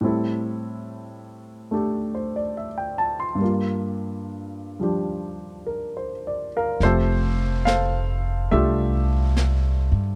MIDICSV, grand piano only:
0, 0, Header, 1, 2, 480
1, 0, Start_track
1, 0, Key_signature, -1, "major"
1, 0, Tempo, 847458
1, 20, Time_signature, 4, 2, 24, 8
1, 5752, End_track
2, 0, Start_track
2, 0, Title_t, "Grand piano"
2, 0, Program_c, 0, 0
2, 5, Note_on_c, 0, 45, 36
2, 9, Note_on_c, 0, 55, 33
2, 20, Note_on_c, 0, 60, 33
2, 27, Note_on_c, 0, 64, 32
2, 34, Note_on_c, 0, 69, 40
2, 124, Control_c, 0, 64, 127
2, 970, Note_on_c, 0, 57, 30
2, 975, Note_on_c, 0, 62, 26
2, 980, Note_off_c, 0, 69, 0
2, 984, Note_on_c, 0, 67, 27
2, 988, Note_on_c, 0, 69, 32
2, 1216, Note_on_c, 0, 72, 32
2, 1337, Note_on_c, 0, 74, 32
2, 1364, Note_off_c, 0, 72, 0
2, 1458, Note_on_c, 0, 76, 32
2, 1503, Note_off_c, 0, 74, 0
2, 1572, Note_on_c, 0, 79, 34
2, 1676, Note_off_c, 0, 76, 0
2, 1689, Note_on_c, 0, 81, 38
2, 1775, Note_off_c, 0, 79, 0
2, 1810, Note_on_c, 0, 84, 40
2, 1840, Note_off_c, 0, 81, 0
2, 1898, Note_on_c, 0, 43, 35
2, 1909, Note_off_c, 0, 55, 0
2, 1917, Note_on_c, 0, 55, 32
2, 1924, Note_off_c, 0, 45, 0
2, 1928, Note_off_c, 0, 57, 0
2, 1930, Note_on_c, 0, 58, 30
2, 1931, Note_off_c, 0, 62, 0
2, 1932, Note_off_c, 0, 60, 0
2, 1935, Note_off_c, 0, 64, 0
2, 1935, Note_off_c, 0, 67, 0
2, 1937, Note_off_c, 0, 69, 0
2, 1938, Control_c, 0, 64, 0
2, 1946, Note_on_c, 0, 65, 31
2, 1978, Note_off_c, 0, 84, 0
2, 2030, Control_c, 0, 64, 127
2, 2707, Note_off_c, 0, 55, 0
2, 2716, Note_on_c, 0, 55, 28
2, 2724, Note_on_c, 0, 53, 27
2, 2734, Note_on_c, 0, 62, 26
2, 2738, Note_on_c, 0, 67, 31
2, 3209, Note_on_c, 0, 70, 32
2, 3380, Note_on_c, 0, 72, 30
2, 3458, Note_off_c, 0, 70, 0
2, 3552, Note_on_c, 0, 74, 33
2, 3672, Note_off_c, 0, 72, 0
2, 3719, Note_on_c, 0, 70, 51
2, 3719, Note_on_c, 0, 77, 36
2, 3791, Note_off_c, 0, 74, 0
2, 3837, Note_off_c, 0, 43, 0
2, 3848, Note_off_c, 0, 55, 0
2, 3852, Note_off_c, 0, 53, 0
2, 3853, Note_off_c, 0, 58, 0
2, 3858, Note_off_c, 0, 62, 0
2, 3858, Note_off_c, 0, 70, 0
2, 3860, Note_off_c, 0, 67, 0
2, 3861, Note_off_c, 0, 65, 0
2, 3862, Control_c, 0, 64, 0
2, 3870, Note_on_c, 0, 72, 64
2, 3872, Note_on_c, 0, 53, 36
2, 3872, Note_on_c, 0, 57, 36
2, 3872, Note_on_c, 0, 60, 35
2, 3872, Note_on_c, 0, 67, 39
2, 3875, Note_on_c, 0, 76, 45
2, 3880, Note_on_c, 0, 69, 45
2, 3949, Control_c, 0, 64, 127
2, 3955, Note_off_c, 0, 77, 0
2, 4335, Note_on_c, 0, 77, 63
2, 4337, Note_off_c, 0, 69, 0
2, 4337, Note_off_c, 0, 72, 0
2, 4345, Note_on_c, 0, 72, 45
2, 4346, Note_on_c, 0, 69, 45
2, 4805, Note_off_c, 0, 76, 0
2, 4813, Note_off_c, 0, 57, 0
2, 4819, Note_off_c, 0, 67, 0
2, 4821, Note_on_c, 0, 57, 35
2, 4823, Note_off_c, 0, 69, 0
2, 4823, Note_on_c, 0, 76, 60
2, 4828, Note_on_c, 0, 67, 46
2, 4829, Note_on_c, 0, 62, 31
2, 4831, Note_on_c, 0, 69, 43
2, 4832, Note_off_c, 0, 77, 0
2, 4836, Note_on_c, 0, 65, 37
2, 5280, Note_off_c, 0, 72, 0
2, 5752, Note_off_c, 0, 53, 0
2, 5752, Note_off_c, 0, 57, 0
2, 5752, Note_off_c, 0, 60, 0
2, 5752, Note_off_c, 0, 62, 0
2, 5752, Note_off_c, 0, 65, 0
2, 5752, Note_off_c, 0, 67, 0
2, 5752, Note_off_c, 0, 69, 0
2, 5752, Note_off_c, 0, 76, 0
2, 5752, End_track
0, 0, End_of_file